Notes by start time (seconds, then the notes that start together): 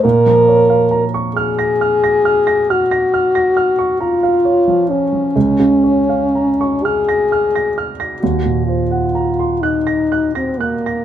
0.04 A#2 A#4
0.26 F3
0.48 C#5
0.70 F5
0.91 A#5
1.14 C#6
1.35 G#4 F6
1.59 A#6
1.81 F6
2.04 A#6
2.25 F6
2.47 A#6
2.70 F#4 F6
2.91 A#6
3.14 F6
3.35 A#6
3.57 F6
3.79 C#6
4.00 F4 A#5
4.23 F5
4.45 C#5
4.67 F3
4.90 C#4 C#5
5.12 F3
5.36 C#2
5.60 C#3
5.84 C#5
6.09 F5
6.35 A#5
6.61 C#6
6.84 G#4 F6
7.09 A#6
7.32 F6
7.55 A#6
7.78 F6
8.00 A#6
8.21 D#2 F#4
8.45 A#2
8.66 F4 C5
8.91 F#5
9.15 A#5
9.39 C6
9.63 D#4 F#6
9.87 A#6
10.12 F#6
10.35 C4 A#6
10.59 A#3 F#6
10.86 A#6